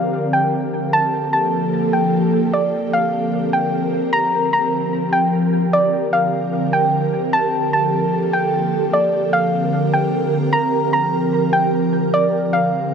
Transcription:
0, 0, Header, 1, 3, 480
1, 0, Start_track
1, 0, Key_signature, -2, "major"
1, 0, Tempo, 400000
1, 1117, Time_signature, 4, 2, 24, 8
1, 15530, End_track
2, 0, Start_track
2, 0, Title_t, "Synth pluck"
2, 0, Program_c, 0, 84
2, 0, Note_on_c, 0, 77, 83
2, 354, Note_off_c, 0, 77, 0
2, 398, Note_on_c, 0, 79, 79
2, 626, Note_off_c, 0, 79, 0
2, 1118, Note_on_c, 0, 81, 109
2, 1569, Note_off_c, 0, 81, 0
2, 1596, Note_on_c, 0, 81, 86
2, 2273, Note_off_c, 0, 81, 0
2, 2318, Note_on_c, 0, 79, 69
2, 2546, Note_off_c, 0, 79, 0
2, 3042, Note_on_c, 0, 74, 88
2, 3491, Note_off_c, 0, 74, 0
2, 3521, Note_on_c, 0, 77, 95
2, 4196, Note_off_c, 0, 77, 0
2, 4238, Note_on_c, 0, 79, 83
2, 4466, Note_off_c, 0, 79, 0
2, 4953, Note_on_c, 0, 82, 116
2, 5406, Note_off_c, 0, 82, 0
2, 5436, Note_on_c, 0, 82, 87
2, 6114, Note_off_c, 0, 82, 0
2, 6151, Note_on_c, 0, 79, 89
2, 6382, Note_off_c, 0, 79, 0
2, 6880, Note_on_c, 0, 74, 107
2, 7330, Note_off_c, 0, 74, 0
2, 7354, Note_on_c, 0, 77, 89
2, 8033, Note_off_c, 0, 77, 0
2, 8076, Note_on_c, 0, 79, 85
2, 8305, Note_off_c, 0, 79, 0
2, 8797, Note_on_c, 0, 81, 111
2, 9248, Note_off_c, 0, 81, 0
2, 9279, Note_on_c, 0, 81, 83
2, 9955, Note_off_c, 0, 81, 0
2, 10000, Note_on_c, 0, 79, 71
2, 10227, Note_off_c, 0, 79, 0
2, 10721, Note_on_c, 0, 74, 91
2, 11170, Note_off_c, 0, 74, 0
2, 11196, Note_on_c, 0, 77, 95
2, 11873, Note_off_c, 0, 77, 0
2, 11922, Note_on_c, 0, 79, 82
2, 12148, Note_off_c, 0, 79, 0
2, 12632, Note_on_c, 0, 82, 108
2, 13086, Note_off_c, 0, 82, 0
2, 13117, Note_on_c, 0, 82, 88
2, 13794, Note_off_c, 0, 82, 0
2, 13834, Note_on_c, 0, 79, 93
2, 14064, Note_off_c, 0, 79, 0
2, 14563, Note_on_c, 0, 74, 107
2, 15012, Note_off_c, 0, 74, 0
2, 15037, Note_on_c, 0, 77, 85
2, 15530, Note_off_c, 0, 77, 0
2, 15530, End_track
3, 0, Start_track
3, 0, Title_t, "Ambient pad"
3, 0, Program_c, 1, 92
3, 0, Note_on_c, 1, 50, 85
3, 0, Note_on_c, 1, 60, 77
3, 0, Note_on_c, 1, 67, 77
3, 0, Note_on_c, 1, 70, 96
3, 1069, Note_off_c, 1, 70, 0
3, 1070, Note_off_c, 1, 60, 0
3, 1100, Note_off_c, 1, 50, 0
3, 1120, Note_on_c, 1, 58, 80
3, 1120, Note_on_c, 1, 69, 98
3, 1121, Note_on_c, 1, 53, 83
3, 3019, Note_off_c, 1, 69, 0
3, 3020, Note_off_c, 1, 53, 0
3, 3020, Note_off_c, 1, 58, 0
3, 3038, Note_on_c, 1, 60, 78
3, 3038, Note_on_c, 1, 70, 91
3, 3039, Note_on_c, 1, 50, 82
3, 4939, Note_off_c, 1, 50, 0
3, 4956, Note_on_c, 1, 53, 86
3, 6831, Note_off_c, 1, 67, 0
3, 6840, Note_off_c, 1, 60, 0
3, 6840, Note_off_c, 1, 70, 0
3, 6857, Note_off_c, 1, 53, 0
3, 6878, Note_on_c, 1, 50, 87
3, 6878, Note_on_c, 1, 60, 78
3, 6878, Note_on_c, 1, 70, 100
3, 6879, Note_on_c, 1, 67, 79
3, 8778, Note_off_c, 1, 60, 0
3, 8779, Note_off_c, 1, 50, 0
3, 8779, Note_off_c, 1, 70, 0
3, 8799, Note_on_c, 1, 53, 83
3, 8800, Note_on_c, 1, 58, 79
3, 8800, Note_on_c, 1, 69, 96
3, 10699, Note_off_c, 1, 53, 0
3, 10699, Note_off_c, 1, 58, 0
3, 10700, Note_off_c, 1, 69, 0
3, 10719, Note_on_c, 1, 70, 96
3, 10720, Note_on_c, 1, 50, 86
3, 10721, Note_on_c, 1, 60, 79
3, 12620, Note_off_c, 1, 50, 0
3, 12620, Note_off_c, 1, 60, 0
3, 12633, Note_on_c, 1, 60, 82
3, 12634, Note_on_c, 1, 53, 90
3, 14536, Note_off_c, 1, 53, 0
3, 14536, Note_off_c, 1, 60, 0
3, 14553, Note_on_c, 1, 50, 89
3, 14554, Note_on_c, 1, 60, 81
3, 15530, Note_off_c, 1, 50, 0
3, 15530, Note_off_c, 1, 60, 0
3, 15530, Note_off_c, 1, 67, 0
3, 15530, Note_off_c, 1, 70, 0
3, 15530, End_track
0, 0, End_of_file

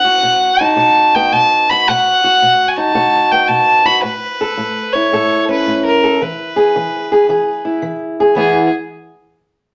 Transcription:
0, 0, Header, 1, 3, 480
1, 0, Start_track
1, 0, Key_signature, 4, "major"
1, 0, Tempo, 541516
1, 1650, Time_signature, 4, 2, 24, 8
1, 8638, End_track
2, 0, Start_track
2, 0, Title_t, "Fiddle"
2, 0, Program_c, 0, 110
2, 0, Note_on_c, 0, 78, 97
2, 547, Note_on_c, 0, 81, 99
2, 560, Note_off_c, 0, 78, 0
2, 1015, Note_on_c, 0, 79, 100
2, 1029, Note_off_c, 0, 81, 0
2, 1171, Note_on_c, 0, 81, 96
2, 1184, Note_off_c, 0, 79, 0
2, 1502, Note_on_c, 0, 83, 98
2, 1516, Note_off_c, 0, 81, 0
2, 1666, Note_on_c, 0, 78, 99
2, 1679, Note_off_c, 0, 83, 0
2, 2375, Note_on_c, 0, 80, 77
2, 2388, Note_off_c, 0, 78, 0
2, 2454, Note_on_c, 0, 81, 94
2, 2467, Note_off_c, 0, 80, 0
2, 2939, Note_on_c, 0, 79, 87
2, 2952, Note_off_c, 0, 81, 0
2, 3083, Note_on_c, 0, 81, 94
2, 3096, Note_off_c, 0, 79, 0
2, 3417, Note_on_c, 0, 83, 95
2, 3430, Note_off_c, 0, 81, 0
2, 3567, Note_off_c, 0, 83, 0
2, 3572, Note_on_c, 0, 71, 93
2, 4368, Note_on_c, 0, 73, 89
2, 4381, Note_off_c, 0, 71, 0
2, 4853, Note_off_c, 0, 73, 0
2, 4880, Note_on_c, 0, 71, 85
2, 5166, Note_off_c, 0, 71, 0
2, 5188, Note_on_c, 0, 70, 85
2, 5514, Note_on_c, 0, 71, 83
2, 5528, Note_off_c, 0, 70, 0
2, 6941, Note_off_c, 0, 71, 0
2, 7405, Note_on_c, 0, 68, 81
2, 7702, Note_off_c, 0, 68, 0
2, 8638, End_track
3, 0, Start_track
3, 0, Title_t, "Steel-string acoustic guitar"
3, 0, Program_c, 1, 25
3, 0, Note_on_c, 1, 47, 71
3, 42, Note_on_c, 1, 66, 61
3, 172, Note_off_c, 1, 47, 0
3, 203, Note_on_c, 1, 47, 67
3, 537, Note_on_c, 1, 63, 52
3, 653, Note_off_c, 1, 47, 0
3, 676, Note_on_c, 1, 47, 60
3, 679, Note_off_c, 1, 66, 0
3, 682, Note_on_c, 1, 66, 60
3, 1023, Note_on_c, 1, 59, 58
3, 1131, Note_off_c, 1, 47, 0
3, 1176, Note_on_c, 1, 47, 67
3, 1486, Note_off_c, 1, 66, 0
3, 1514, Note_on_c, 1, 66, 61
3, 1621, Note_off_c, 1, 47, 0
3, 1637, Note_off_c, 1, 63, 0
3, 1639, Note_off_c, 1, 59, 0
3, 1672, Note_on_c, 1, 47, 66
3, 1977, Note_off_c, 1, 66, 0
3, 1988, Note_on_c, 1, 66, 63
3, 2110, Note_off_c, 1, 47, 0
3, 2146, Note_on_c, 1, 47, 65
3, 2459, Note_on_c, 1, 63, 53
3, 2588, Note_off_c, 1, 47, 0
3, 2605, Note_off_c, 1, 66, 0
3, 2612, Note_on_c, 1, 47, 73
3, 2615, Note_on_c, 1, 66, 63
3, 2942, Note_on_c, 1, 59, 59
3, 3061, Note_off_c, 1, 47, 0
3, 3091, Note_on_c, 1, 47, 76
3, 3404, Note_off_c, 1, 66, 0
3, 3415, Note_on_c, 1, 66, 62
3, 3541, Note_off_c, 1, 47, 0
3, 3559, Note_off_c, 1, 63, 0
3, 3560, Note_off_c, 1, 59, 0
3, 3574, Note_on_c, 1, 45, 68
3, 3576, Note_off_c, 1, 66, 0
3, 3907, Note_on_c, 1, 69, 65
3, 4023, Note_off_c, 1, 45, 0
3, 4055, Note_on_c, 1, 45, 68
3, 4389, Note_on_c, 1, 64, 57
3, 4503, Note_off_c, 1, 45, 0
3, 4539, Note_off_c, 1, 69, 0
3, 4543, Note_on_c, 1, 45, 69
3, 4549, Note_on_c, 1, 69, 64
3, 4862, Note_on_c, 1, 61, 53
3, 4987, Note_off_c, 1, 45, 0
3, 5023, Note_on_c, 1, 45, 71
3, 5341, Note_off_c, 1, 69, 0
3, 5353, Note_on_c, 1, 69, 63
3, 5467, Note_off_c, 1, 45, 0
3, 5480, Note_off_c, 1, 61, 0
3, 5485, Note_off_c, 1, 69, 0
3, 5510, Note_on_c, 1, 52, 70
3, 5817, Note_on_c, 1, 68, 70
3, 5949, Note_off_c, 1, 52, 0
3, 5991, Note_on_c, 1, 52, 69
3, 6294, Note_off_c, 1, 68, 0
3, 6309, Note_on_c, 1, 68, 61
3, 6429, Note_off_c, 1, 52, 0
3, 6454, Note_off_c, 1, 68, 0
3, 6462, Note_on_c, 1, 52, 63
3, 6468, Note_on_c, 1, 68, 59
3, 6776, Note_off_c, 1, 64, 0
3, 6779, Note_on_c, 1, 64, 50
3, 6904, Note_off_c, 1, 52, 0
3, 6933, Note_on_c, 1, 52, 69
3, 7254, Note_off_c, 1, 68, 0
3, 7270, Note_on_c, 1, 68, 64
3, 7378, Note_off_c, 1, 52, 0
3, 7394, Note_off_c, 1, 64, 0
3, 7401, Note_off_c, 1, 68, 0
3, 7402, Note_on_c, 1, 52, 63
3, 7415, Note_on_c, 1, 59, 64
3, 7422, Note_on_c, 1, 64, 58
3, 7426, Note_on_c, 1, 68, 55
3, 7691, Note_off_c, 1, 52, 0
3, 7697, Note_off_c, 1, 59, 0
3, 7701, Note_off_c, 1, 64, 0
3, 7703, Note_off_c, 1, 68, 0
3, 8638, End_track
0, 0, End_of_file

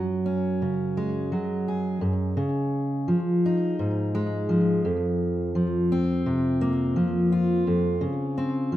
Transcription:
0, 0, Header, 1, 2, 480
1, 0, Start_track
1, 0, Tempo, 705053
1, 1624, Time_signature, 4, 2, 24, 8
1, 5969, End_track
2, 0, Start_track
2, 0, Title_t, "Steel-string acoustic guitar"
2, 0, Program_c, 0, 25
2, 0, Note_on_c, 0, 42, 69
2, 0, Note_on_c, 0, 54, 56
2, 175, Note_on_c, 0, 61, 52
2, 421, Note_on_c, 0, 49, 54
2, 662, Note_on_c, 0, 56, 55
2, 890, Note_off_c, 0, 54, 0
2, 898, Note_on_c, 0, 54, 58
2, 903, Note_off_c, 0, 49, 0
2, 1145, Note_on_c, 0, 68, 49
2, 1348, Note_off_c, 0, 42, 0
2, 1351, Note_off_c, 0, 61, 0
2, 1352, Note_off_c, 0, 54, 0
2, 1356, Note_off_c, 0, 68, 0
2, 1370, Note_on_c, 0, 42, 67
2, 1589, Note_off_c, 0, 42, 0
2, 1612, Note_on_c, 0, 49, 68
2, 2096, Note_on_c, 0, 53, 57
2, 2098, Note_off_c, 0, 49, 0
2, 2353, Note_on_c, 0, 63, 56
2, 2581, Note_on_c, 0, 44, 64
2, 2815, Note_off_c, 0, 56, 0
2, 2823, Note_on_c, 0, 56, 59
2, 3054, Note_off_c, 0, 53, 0
2, 3057, Note_on_c, 0, 53, 60
2, 3274, Note_off_c, 0, 44, 0
2, 3280, Note_off_c, 0, 63, 0
2, 3300, Note_on_c, 0, 41, 68
2, 3304, Note_off_c, 0, 56, 0
2, 3776, Note_off_c, 0, 53, 0
2, 3779, Note_on_c, 0, 53, 59
2, 4030, Note_on_c, 0, 60, 59
2, 4262, Note_on_c, 0, 48, 62
2, 4501, Note_on_c, 0, 58, 64
2, 4730, Note_off_c, 0, 53, 0
2, 4739, Note_on_c, 0, 53, 61
2, 4743, Note_off_c, 0, 48, 0
2, 4985, Note_on_c, 0, 65, 54
2, 5192, Note_off_c, 0, 53, 0
2, 5193, Note_off_c, 0, 58, 0
2, 5214, Note_off_c, 0, 41, 0
2, 5222, Note_on_c, 0, 41, 64
2, 5453, Note_on_c, 0, 49, 71
2, 5463, Note_off_c, 0, 41, 0
2, 5694, Note_off_c, 0, 60, 0
2, 5702, Note_on_c, 0, 60, 52
2, 5937, Note_off_c, 0, 49, 0
2, 5937, Note_on_c, 0, 53, 61
2, 5969, Note_off_c, 0, 53, 0
2, 5969, Note_off_c, 0, 60, 0
2, 5969, Note_off_c, 0, 65, 0
2, 5969, End_track
0, 0, End_of_file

